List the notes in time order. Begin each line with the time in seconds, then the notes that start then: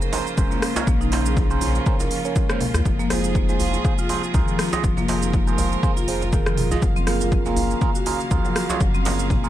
Already playing: C#3 F3 A#3 F4 C5
0.02 A#4, shaker
0.13 C#4 A#4 C5, open hi-hat, djembe slap, djembe tone, shaker
0.27 shaker
0.38 F1 G#3 C#4 A#4 C5, kick, shaker
0.51 A#3, djembe tone, shaker
0.62 A#4, cross-stick, open hi-hat, shaker
0.76 C#4 A#4 C#5, djembe slap, djembe tone, shaker
0.87 A#1 A#3 C#4, kick, shaker
1.01 D#4, shaker
1.12 C#4 A#4 C5, open hi-hat, djembe slap, djembe tone, shaker
1.26 G#4, shaker
1.37 kick, djembe tone, shaker
1.51 C#4 A#4 C5, shaker
1.61 open hi-hat, djembe bass, shaker
1.75 djembe tone, shaker
1.86 C#4 A#4 C5, kick, shaker
2.00 A#4, djembe tone, shaker
2.11 open hi-hat, shaker
2.25 C#4 A#4 C#5, shaker
2.36 G#3, kick, djembe tone, shaker
2.50 A#3 C#4 A#4 C5, cross-stick, shaker
2.60 A#4, mid tom, open hi-hat, djembe tone, shaker
2.74 D#2, cross-stick, djembe bass, shaker
2.85 F1 C3 F3 G#3 G#4, kick, djembe tone, shaker
2.99 A#3, shaker
3.10 G#3 F4 G#4 C5, cross-stick, open hi-hat, djembe tone, shaker
3.24 D#4, shaker
3.35 kick, shaker
3.49 G#3 F4 G#4 C5, djembe tone, shaker
3.60 open hi-hat, djembe bass, shaker
3.73 djembe tone, shaker
3.85 F4 G#4 C5, kick, shaker
3.98 F4, shaker
4.09 F4 G#4 C5, open hi-hat, djembe slap, djembe tone, shaker
4.23 shaker
4.34 C2 D#3 F4 G#4 A#4, kick, djembe tone, shaker
4.48 F3, shaker
4.59 F4, cross-stick, open hi-hat, shaker
4.73 F4 G#4 D#5, djembe slap, djembe tone, shaker
4.84 F1 F3 A#4, kick, shaker
4.97 A#3, djembe tone, shaker
5.08 G#3 F4 G#4 C5, open hi-hat, djembe slap, shaker
5.22 D#4, shaker
5.33 kick, djembe tone, shaker
5.47 G#3 F4 G#4 C5, shaker
5.58 open hi-hat, djembe tone, djembe bass, shaker
5.72 shaker
5.83 F4 G#4 C5, kick, shaker
5.97 F4, djembe tone, shaker
6.08 F1 F4 G#4 C5, open hi-hat, shaker
6.21 djembe tone, shaker
6.33 D#3 F4 G#4 A#4, kick, shaker
6.46 F3, cross-stick, shaker
6.57 F4, mid tom, open hi-hat, djembe tone, shaker
6.71 F4 G#4 D#5, djembe bass, shaker
6.82 F#1 C#3 F#3 A#3 F5, kick, djembe tone, shaker
6.96 C4, shaker
7.07 A#3 F4 G#4 A#4, cross-stick, open hi-hat, shaker
7.21 F4, djembe tone, shaker
7.32 kick, shaker
7.46 A#3 F4 G#4 A#4, djembe tone, shaker
7.56 open hi-hat, djembe bass, shaker
7.71 shaker
7.81 F4 G#4 A#4, kick, djembe tone, shaker
7.95 F#4, shaker
8.06 F4 G#4 A#4, open hi-hat, djembe slap, djembe tone, shaker
8.20 shaker
8.31 C#2 F3 F4 G#4 A#4, kick, shaker
8.44 F#3, djembe tone, shaker
8.56 F#4, cross-stick, open hi-hat, shaker
8.69 F4 G#4 C#5, djembe slap, djembe tone, shaker
8.80 F#1 F#3 G#4, kick, shaker
8.94 C4, shaker
9.05 A#3 F4 G#4 A#4, open hi-hat, djembe slap, djembe tone, shaker
9.19 F4, shaker
9.30 kick, mid tom, djembe tone, shaker
9.44 A#3 F4 G#4 A#4, shaker